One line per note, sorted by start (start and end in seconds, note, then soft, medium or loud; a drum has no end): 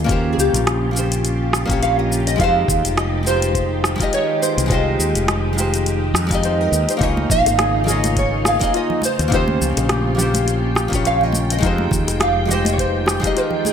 0.00 0.34 D#2 medium
0.00 2.36 C#3 medium
0.00 4.66 F4 medium
0.00 6.97 G4 medium
0.04 0.90 A#3 loud
0.04 0.91 C#4 medium
0.04 0.92 F4 medium
0.09 0.93 G4 medium
0.09 0.32 A#4 medium
0.09 0.94 C5 loud
0.09 kick loud
0.09 closed hi-hat soft
0.09 shaker soft
0.33 0.38 G#4 medium
0.38 0.51 C#2 medium
0.38 1.50 G4 medium
0.38 shaker medium
0.53 1.64 A#1 medium
0.53 closed hi-hat medium
0.53 shaker soft
0.67 cross-stick medium
0.67 closed hi-hat soft
0.67 shaker soft
0.91 1.64 A#3 medium
0.91 1.65 C#4 medium
0.91 1.66 F4 medium
0.96 1.67 G4 medium
0.96 1.68 C5 medium
0.96 shaker medium
1.12 closed hi-hat medium
1.12 shaker medium
1.25 closed hi-hat soft
1.25 shaker soft
1.53 cross-stick medium
1.53 shaker medium
1.66 2.36 A#1 medium
1.66 2.35 A#3 loud
1.66 2.36 C#4 medium
1.66 2.37 F4 loud
1.66 kick loud
1.70 2.37 G4 medium
1.70 2.38 C#5 loud
1.70 closed hi-hat medium
1.70 shaker soft
1.83 1.99 F5 loud
1.83 closed hi-hat soft
1.83 shaker soft
1.99 2.26 D#5 loud
2.12 shaker medium
2.27 2.40 D#5 loud
2.27 closed hi-hat medium
2.27 shaker soft
2.36 2.63 F2 medium
2.36 6.97 D#3 medium
2.36 3.21 G#3 loud
2.36 6.97 G#3 medium
2.36 3.22 D#4 medium
2.36 3.23 F4 medium
2.36 kick loud
2.40 3.24 G4 medium
2.40 3.25 C5 loud
2.40 2.98 F5 loud
2.40 closed hi-hat soft
2.40 shaker soft
2.68 2.81 D#2 medium
2.68 kick loud
2.68 shaker medium
2.84 3.95 F1 medium
2.84 closed hi-hat medium
2.84 shaker soft
2.98 3.25 D#5 medium
2.98 cross-stick medium
2.98 closed hi-hat soft
2.98 shaker soft
3.23 3.94 G#3 medium
3.23 3.96 D#4 medium
3.23 3.97 F4 medium
3.23 shaker medium
3.27 3.98 G4 medium
3.27 4.13 C5 loud
3.27 3.99 C5 medium
3.42 closed hi-hat medium
3.42 shaker soft
3.55 kick medium
3.55 closed hi-hat soft
3.55 shaker soft
3.84 cross-stick medium
3.84 shaker medium
3.96 4.65 G#3 loud
3.96 4.66 D#4 medium
3.96 4.67 F4 medium
4.00 4.68 G4 medium
4.00 4.69 D#5 loud
4.00 kick loud
4.00 closed hi-hat medium
4.00 shaker soft
4.13 4.42 C#5 loud
4.13 closed hi-hat soft
4.13 shaker soft
4.42 4.69 C5 loud
4.42 shaker medium
4.58 4.95 C2 medium
4.58 closed hi-hat medium
4.58 shaker soft
4.66 5.52 G#3 loud
4.66 5.53 D#4 medium
4.66 8.99 D#4 medium
4.66 5.54 F4 medium
4.70 5.54 G4 medium
4.70 5.55 C5 loud
4.70 6.40 D#5 loud
4.70 kick loud
4.70 closed hi-hat soft
4.70 shaker soft
4.99 5.12 D#2 medium
4.99 shaker medium
5.15 6.13 F1 medium
5.15 closed hi-hat medium
5.15 shaker soft
5.28 cross-stick medium
5.28 closed hi-hat soft
5.28 shaker soft
5.53 6.26 G#3 medium
5.53 6.26 D#4 medium
5.53 6.27 F4 medium
5.58 6.28 G4 medium
5.58 6.29 C5 medium
5.58 shaker medium
5.74 closed hi-hat medium
5.74 shaker soft
5.86 closed hi-hat soft
5.86 shaker soft
6.14 6.68 F2 medium
6.14 cross-stick medium
6.14 shaker medium
6.27 6.96 G#3 medium
6.27 6.97 D#4 medium
6.27 6.98 F4 medium
6.27 kick loud
6.31 6.99 G4 medium
6.31 7.00 D#5 loud
6.31 closed hi-hat medium
6.31 shaker soft
6.43 6.61 C5 loud
6.43 closed hi-hat soft
6.43 shaker soft
6.61 6.89 A#4 medium
6.72 6.85 D#2 medium
6.72 shaker medium
6.89 7.03 C5 medium
6.89 closed hi-hat medium
6.89 shaker soft
6.97 7.25 C#2 medium
6.97 7.83 A#3 loud
6.97 7.83 D#4 medium
6.97 7.18 D#4 medium
6.97 7.84 F4 medium
7.01 11.59 C#3 medium
7.01 9.01 A#3 medium
7.01 9.01 F4 medium
7.01 7.85 G#4 medium
7.01 7.86 C#5 loud
7.01 7.31 D#5 loud
7.01 kick loud
7.01 closed hi-hat soft
7.01 shaker soft
7.17 high conga medium
7.30 7.43 A#1 medium
7.30 7.84 F5 loud
7.30 kick loud
7.30 low conga medium
7.30 shaker medium
7.46 8.56 G#1 medium
7.46 closed hi-hat medium
7.46 high bongo medium
7.46 shaker soft
7.59 7.85 G#4 medium
7.59 cross-stick medium
7.59 closed hi-hat soft
7.59 high bongo soft
7.59 high conga medium
7.59 shaker soft
7.84 8.56 A#3 medium
7.84 8.57 D#4 medium
7.84 8.58 F4 medium
7.84 8.15 G#4 loud
7.84 low conga medium
7.88 8.59 G#4 medium
7.88 8.60 C#5 medium
7.88 8.18 D#5 loud
7.88 shaker medium
8.04 closed hi-hat medium
8.04 high conga medium
8.04 shaker soft
8.17 8.47 C#5 medium
8.17 kick medium
8.17 closed hi-hat soft
8.17 shaker soft
8.45 8.73 G#4 loud
8.45 8.73 F5 medium
8.45 cross-stick medium
8.45 high conga medium
8.45 shaker medium
8.59 9.00 A#3 loud
8.59 9.01 D#4 loud
8.59 9.01 F4 medium
8.59 9.02 G#4 medium
8.59 9.02 D#5 loud
8.59 kick loud
8.59 closed hi-hat medium
8.59 shaker soft
8.74 8.92 F4 medium
8.74 9.02 D#5 loud
8.74 closed hi-hat soft
8.74 shaker soft
8.90 low conga medium
9.02 11.60 F4 medium
9.02 9.31 C5 medium
9.02 13.73 G5 medium
9.02 high conga medium
9.02 shaker medium
9.19 9.57 D#2 medium
9.19 closed hi-hat medium
9.19 shaker soft
9.28 10.13 A#3 loud
9.28 10.14 C#4 medium
9.28 10.15 F4 medium
9.32 9.49 D#4 medium
9.32 10.16 G4 medium
9.32 11.11 C5 loud
9.32 10.17 C5 loud
9.32 kick loud
9.32 closed hi-hat soft
9.32 shaker soft
9.48 high conga medium
9.61 9.74 C#2 medium
9.61 low conga medium
9.61 shaker medium
9.77 10.87 A#1 medium
9.77 closed hi-hat medium
9.77 high bongo medium
9.77 shaker soft
9.89 10.16 G4 loud
9.89 cross-stick medium
9.89 closed hi-hat soft
9.89 high conga medium
9.89 shaker soft
10.15 10.87 A#3 medium
10.15 10.88 C#4 medium
10.15 10.89 F4 medium
10.15 10.46 G4 loud
10.15 low conga medium
10.19 10.90 G4 medium
10.19 10.91 C5 medium
10.19 shaker medium
10.34 closed hi-hat medium
10.34 high conga medium
10.34 shaker soft
10.48 closed hi-hat soft
10.48 shaker soft
10.75 11.04 G4 loud
10.75 cross-stick medium
10.75 high conga medium
10.75 shaker medium
10.88 11.58 A#3 loud
10.88 11.58 C#4 loud
10.88 11.59 F4 medium
10.92 11.59 A#1 loud
10.92 11.60 G4 medium
10.92 11.61 C#5 loud
10.92 kick medium
10.92 closed hi-hat medium
10.92 shaker soft
11.05 11.23 F4 medium
11.05 11.23 F5 loud
11.05 closed hi-hat soft
11.05 shaker soft
11.21 11.51 D#5 medium
11.21 low conga medium
11.32 high conga medium
11.32 shaker medium
11.50 12.22 D#5 loud
11.50 closed hi-hat medium
11.50 shaker soft
11.59 12.44 G#3 loud
11.59 12.45 D#4 loud
11.59 11.80 D#4 medium
11.59 12.46 F4 medium
11.63 11.86 F2 loud
11.63 13.73 D#3 medium
11.63 13.73 G#3 medium
11.63 13.73 F4 medium
11.63 12.47 G4 medium
11.63 12.48 C5 loud
11.63 kick loud
11.63 closed hi-hat soft
11.63 shaker soft
11.78 high conga medium
11.91 12.05 D#2 medium
11.91 kick loud
11.91 low conga medium
11.91 shaker medium
12.08 13.18 F1 medium
12.08 closed hi-hat medium
12.08 high bongo medium
12.08 shaker soft
12.20 12.46 G4 loud
12.20 12.50 F5 loud
12.20 cross-stick medium
12.20 closed hi-hat soft
12.20 high bongo soft
12.20 high conga medium
12.20 shaker soft
12.45 13.18 G#3 medium
12.45 13.19 D#4 medium
12.45 13.20 F4 medium
12.45 12.76 G4 loud
12.45 low conga medium
12.51 13.21 G4 medium
12.51 13.22 C5 medium
12.51 12.71 D#5 loud
12.51 shaker medium
12.65 closed hi-hat medium
12.65 high conga medium
12.65 shaker soft
12.73 12.78 C#5 medium
12.78 13.38 C5 medium
12.78 kick medium
12.78 closed hi-hat soft
12.78 shaker soft
13.06 13.34 G4 loud
13.06 cross-stick medium
13.06 high conga medium
13.06 shaker medium
13.20 13.73 G#3 loud
13.20 13.73 D#4 loud
13.20 13.73 F4 loud
13.20 kick loud
13.24 13.73 G4 medium
13.24 13.73 D#5 loud
13.24 closed hi-hat medium
13.24 shaker soft
13.35 13.53 F4 medium
13.35 13.45 A#4 medium
13.35 closed hi-hat soft
13.35 shaker soft
13.51 low conga medium
13.65 13.73 G#4 medium
13.65 high conga medium
13.65 shaker medium